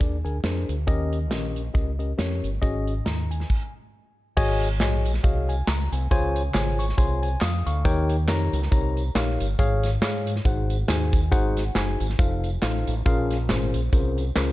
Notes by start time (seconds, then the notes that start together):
0.00 D#2 D4 G#4 A#4 D5, kick, closed hi-hat
0.25 D2 D4 G#4 A#4 G#5, closed hi-hat
0.44 F2 D4 G#4 A#4 C5, snare, closed hi-hat
0.69 D2, closed hi-hat
0.87 D#2 D#3 C#4 G4 A#4 D#5, kick, closed hi-hat
1.12 closed hi-hat
1.30 A#1 C#4 G4 A#4 D#5, snare, closed hi-hat
1.56 closed hi-hat
1.74 C#2 C#4 G4 A#4 D#5, kick, closed hi-hat
1.99 C#4 G4 A#4 D#5, closed hi-hat
2.18 F2 C#4 G4 A#4 C#5, snare, closed hi-hat
2.43 G1, closed hi-hat
2.61 G#2 C#4 F#4 G#4 D#5, kick, closed hi-hat
2.87 closed hi-hat
3.05 D#2 A#5, snare, closed hi-hat
3.31 G#5, closed hi-hat
3.40 snare
3.50 kick, crash
4.37 G#1 G#2 F#4 G#4 C#5 D#5 G#5, kick, crash, tambourine
4.62 closed hi-hat, tambourine
4.80 A#1 F#4 G#4 C#5 D#5 G#5, snare, clap, closed hi-hat, tambourine
5.05 closed hi-hat, tambourine
5.14 snare
5.24 C2 F#4 G#4 C#5 D#5 F5, kick, closed hi-hat, tambourine
5.49 G#5, closed hi-hat, tambourine
5.67 C#2 A#5, snare, clap, closed hi-hat, tambourine
5.92 C2 G#5, closed hi-hat, tambourine
6.11 C#2 C#3 F4 G#4 C5 C#5 G#5, kick, closed hi-hat, tambourine
6.36 closed hi-hat, tambourine
6.54 G#1 F4 G#4 C5 C#5 G#5, snare, clap, closed hi-hat, tambourine
6.79 C#6, closed hi-hat, tambourine
6.89 snare
6.97 C2 F4 G#4 C5 C#5 G#5 C6, kick, closed hi-hat, tambourine
7.23 G#5, closed hi-hat, tambourine
7.41 F2 F5 D#6, snare, clap, closed hi-hat, tambourine
7.66 D2 F5 C#6, closed hi-hat, tambourine
7.85 D#2 D#3 D#4 G4 A#4 C#5 G5, kick, closed hi-hat, tambourine
8.09 closed hi-hat, tambourine
8.28 F2 D#4 G4 A#4 C#5 A#5, snare, clap, closed hi-hat, tambourine
8.53 C#2, closed hi-hat, tambourine
8.62 snare
8.71 C2 D#4 G4 A#4 C#5 A#5, kick, closed hi-hat, tambourine
8.97 closed hi-hat, tambourine
9.15 A#1 D#4 G4 A#4 C#5 F5, snare, clap, closed hi-hat, tambourine
9.40 G1, closed hi-hat, tambourine
9.59 G#1 G#2 G#4 C#5 F5, kick, closed hi-hat, tambourine
9.83 snare, closed hi-hat, tambourine
10.02 G#2 G#4 C#5 F5, snare, clap, closed hi-hat, tambourine
10.27 closed hi-hat, tambourine
10.36 snare
10.45 G#1 G#2 D#4 F#4 G#4 C5 F#5, kick, closed hi-hat, tambourine
10.70 closed hi-hat, tambourine
10.88 D#2 D#4 F#4 G#4 C5 G#5, snare, clap, closed hi-hat, tambourine
11.13 kick, closed hi-hat, tambourine
11.31 G#1 D#4 F#4 G#4 C5 F#5, kick, closed hi-hat, tambourine
11.57 snare, closed hi-hat, tambourine
11.75 F#1 D#4 F#4 G#4 C5 G#5, snare, clap, closed hi-hat, tambourine
12.00 G#1, closed hi-hat, tambourine
12.09 snare
12.19 F1 D#4 F4 A4 C5 F5, kick, closed hi-hat, tambourine
12.44 closed hi-hat, tambourine
12.62 A1 D#4 F4 A4 C5 F5, snare, clap, closed hi-hat, tambourine
12.87 A1, closed hi-hat, tambourine
13.05 A#1 A#2 C#4 F4 G#4 A#4 F5, kick, closed hi-hat, tambourine
13.31 snare, closed hi-hat, tambourine
13.49 G#1 C#4 F4 G#4 A#4 C5, snare, clap, closed hi-hat, tambourine
13.74 A#1, closed hi-hat, tambourine
13.93 C2 C#4 F4 G#4 A#4 C5, kick, closed hi-hat, tambourine
14.18 closed hi-hat, tambourine
14.36 C#2 C#4 F4 G#4 A#4 C5, snare, clap, closed hi-hat, tambourine